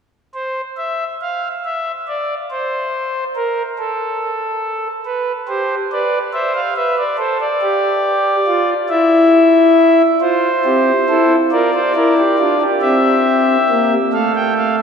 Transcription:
0.34 0.61 C5 medium
0.77 1.04 E5 medium
1.21 1.48 F5 medium
1.65 1.91 E5 medium
2.07 2.34 D5 medium
2.51 3.24 C5 medium
3.35 3.62 A#4 medium
3.78 4.88 A4 medium
5.05 5.32 B4 medium
5.48 5.75 G4 medium
5.48 5.75 C5 medium
5.92 6.18 B4 medium
5.92 6.18 D5 medium
6.33 6.60 C5 medium
6.33 6.52 E5 medium
6.54 6.73 F5 medium
6.76 7.03 B4 medium
6.76 6.95 E5 medium
6.97 7.16 D5 medium
7.18 7.45 A4 medium
7.18 7.37 C5 medium
7.40 8.69 D5 medium
7.61 8.36 G4 loud
8.47 8.74 F4 medium
8.89 10.02 E4 medium
8.89 10.02 E5 medium
10.21 10.48 F4 medium
10.21 11.33 C5 medium
10.64 10.91 C4 medium
10.64 10.91 G4 medium
11.09 11.36 E4 medium
11.09 11.36 A4 medium
11.51 11.78 F4 medium
11.51 11.70 A#4 medium
11.51 12.63 D5 medium
11.74 11.92 C5 medium
11.95 12.22 E4 medium
11.95 12.14 A#4 medium
12.18 12.35 G4 medium
12.39 12.65 D4 medium
12.39 12.57 F4 medium
12.61 13.92 G4 medium
12.81 13.56 C4 loud
12.81 13.94 E5 medium
13.69 13.96 A#3 medium
14.13 14.82 A3 medium
14.13 14.82 A4 medium
14.13 14.31 F5 medium
14.35 14.53 G5 medium
14.57 14.75 F5 medium

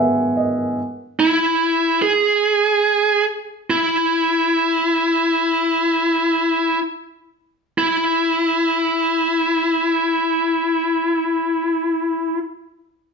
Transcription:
0.00 0.74 G#2 medium
0.00 0.73 D#3 soft
0.00 0.79 G#3 soft
0.00 0.75 B3 soft
0.00 0.34 E5 soft
0.00 0.79 F#5 medium
0.00 0.79 G#5 soft
0.37 0.75 D#5 soft
1.20 1.98 E4 medium
2.02 3.24 G#4 medium
3.70 6.79 E4 medium
7.78 12.38 E4 soft

